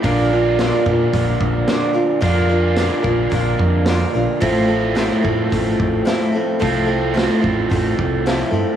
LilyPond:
<<
  \new Staff \with { instrumentName = "Steel-string acoustic guitar" } { \time 4/4 \key bes \lydian \tempo 4 = 109 <bes, d g d' f' bes'>8 <g d' f' bes'>8 <bes, d g d' f' bes'>8 <g d' f' bes'>8 <g d' f' bes'>4 <bes, d g d' f' bes'>8 <g d' f' bes'>8 | <bes, d g d' f' bes'>8 <g d' f' bes'>8 <bes, d g d' f' bes'>8 <g d' f' bes'>8 <g d' f' bes'>4 <bes, d g d' f' bes'>8 <g d' f' bes'>8 | <a, f a c' e' a'>8 <a c' e' a'>8 <a, f a c' e' a'>8 <a c' e' a'>8 <a c' a'>4 <a, f a c' e' a'>8 <a c' e' a'>8 | <a, f a c' e' a'>8 <a c' e' a'>8 <a, f a c' e' a'>8 <a c' e' a'>8 <a c' a'>4 <a, f a c' e' a'>8 <a c' e' a'>8 | }
  \new Staff \with { instrumentName = "Overdriven electric guitar" } { \time 4/4 \key bes \lydian <bes, d bes d' f'>1 | <bes, d bes d' f'>1 | <a, f a c' f'>1 | <a, f a c' f'>1 | }
  \new Staff \with { instrumentName = "Fingered electric bass" } { \clef bass \time 4/4 \key bes \lydian bes,,4. bes,8 bes,,8 bes,,8 r4 | f,4. bes,,8 bes,,8 f,4 bes,,16 r16 | a,,4. a,8 a,,8 a,,8 r4 | c,4. a,,8 a,,8 c,4 g,16 r16 | }
  \new DrumStaff \with { instrumentName = "Drums" } \drummode { \time 4/4 <hho bd>4 <hho sn>8 bd8 <hho bd>8 bd8 <hho sn>4 | <hho bd>4 <hho sn>8 bd8 <hho bd>8 bd8 <hho sn>4 | <hho bd>4 <hho sn>8 bd8 <hho bd>8 bd8 <hho sn>4 | <hho bd>4 <hho sn>8 bd8 <hho bd>8 bd8 <hho sn>4 | }
>>